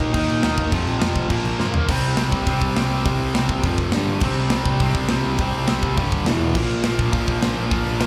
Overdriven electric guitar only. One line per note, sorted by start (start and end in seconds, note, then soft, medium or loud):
0.00 0.11 D#3 medium
0.00 0.12 A#3 medium
0.00 0.14 D#4 medium
0.13 0.43 D#3 medium
0.13 0.43 A#3 loud
0.13 0.42 D#4 loud
0.43 0.72 D#3 medium
0.43 0.72 A#3 loud
0.43 0.72 D#4 medium
0.72 0.99 F2 loud
0.72 0.99 C3 loud
0.72 0.97 F3 loud
0.99 1.29 F2 medium
0.99 1.28 C3 medium
0.99 1.28 F3 loud
1.29 1.59 A#2 loud
1.29 1.58 F3 loud
1.29 1.58 A#3 loud
1.59 1.88 A#2 medium
1.59 1.88 F3 medium
1.59 1.88 A#3 loud
1.89 2.17 C3 loud
1.89 2.16 G3 loud
1.89 2.16 C4 loud
2.17 2.45 C3 medium
2.17 2.46 G3 loud
2.17 2.46 C4 loud
2.46 2.77 C3 medium
2.46 2.76 G3 medium
2.46 2.75 C4 loud
2.76 3.04 C3 medium
2.76 3.05 G3 loud
2.76 3.06 C4 loud
3.05 3.35 C3 medium
3.05 3.34 G3 loud
3.05 3.33 C4 loud
3.34 3.63 C3 medium
3.34 3.63 G3 loud
3.34 3.63 C4 loud
3.64 3.92 F2 medium
3.64 3.93 C3 loud
3.64 3.93 F3 loud
3.94 4.22 G2 loud
3.94 4.22 D3 loud
3.94 4.24 G3 loud
4.23 4.52 C3 loud
4.23 4.51 G3 loud
4.23 4.50 C4 loud
4.51 4.80 C3 medium
4.51 4.81 G3 loud
4.51 4.82 C4 loud
4.81 5.11 C3 medium
4.81 5.11 G3 medium
4.81 5.09 C4 loud
5.10 5.39 C3 medium
5.10 5.40 G3 loud
5.10 5.41 C4 loud
5.40 5.69 C3 medium
5.40 5.68 G3 loud
5.40 5.68 C4 loud
5.69 5.97 C3 medium
5.69 5.97 G3 loud
5.69 5.97 C4 loud
5.97 6.25 G2 medium
5.97 6.26 D3 loud
5.97 6.26 G3 loud
6.26 6.54 E2 medium
6.26 6.55 B2 loud
6.26 6.55 E3 loud
6.56 6.85 A#2 loud
6.56 6.84 F3 loud
6.56 6.83 A#3 loud
6.83 7.10 A#2 medium
6.83 7.11 F3 medium
6.83 7.12 A#3 loud
7.12 7.42 A#2 medium
7.12 7.41 F3 medium
7.12 7.41 A#3 medium
7.41 7.69 A#2 medium
7.41 7.70 F3 loud
7.41 7.71 A#3 loud
7.70 8.00 A#2 loud
7.70 7.98 F3 loud
7.70 7.99 A#3 loud
7.99 8.06 A#2 medium
7.99 8.06 F3 loud
7.99 8.06 A#3 loud